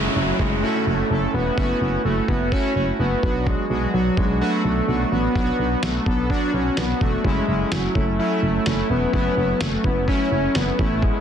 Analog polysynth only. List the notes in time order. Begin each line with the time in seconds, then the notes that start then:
Already playing: A3 C#4 E4 F#4
0.16 A3 C#4 E4 F#4
0.40 A3 C#4 E4 F#4
0.63 A3 C#4 E4 F#4
0.87 A3 C#4 E4 F#4
1.10 A3 C#4 E4 A4
1.34 A3 C#4 E4 F#4
1.58 A3 C#4 E4 F#4
1.81 A3 C#4 E4 F#4
2.05 A3 C#4 E4 F#4
2.28 A3 C#4 E4 F#4
2.52 A3 C#4 E4 F#4
2.76 A3 C#4 E4 F#4
2.99 A3 C#4 E4 F#4
3.23 F#3 B3 D4 F#4
3.70 F#3 B3 D4 F#4
3.94 F#3 B3 D4 F#4
4.17 F#3 B3 D4 F#4
4.41 F#3 B3 D4 F#4
4.64 F#3 B3 D4 F#4
4.88 F#3 B3 D4 F#4
5.12 F#3 B3 D4 F#4
5.35 F#3 B3 D4 F#4
5.59 F#3 B3 D4 F#4
5.83 F#3 B3 D4 F#4
6.06 F#3 B3 D4 A4
6.30 F#3 B3 D4 F#4
6.53 F#3 B3 D4 F#4
6.77 F#3 B3 D4 F#4
7.01 F#3 B3 D4 F#4
7.24 F#3 A3 C#4 E4
7.48 F#3 A3 C#4 E4
7.72 F#3 A3 C#4 E4
7.95 F#3 A3 C#4 E4
8.19 F#3 A3 C#4 E4
8.43 F#3 A3 C#4 E4
8.66 F#3 A3 C#4 E4
8.90 F#3 A3 C#4 E4
9.14 F#3 A3 C#4 E4
9.37 F#3 A3 C#4 E4
9.61 F#3 A3 C#4 F#4
9.85 F#3 A3 C#4 E4
10.08 F#3 A3 C#4 E4
10.32 F#3 A3 C#4 E4
10.55 F#3 A3 C#4 E4
10.79 A3 B3 C#4 E4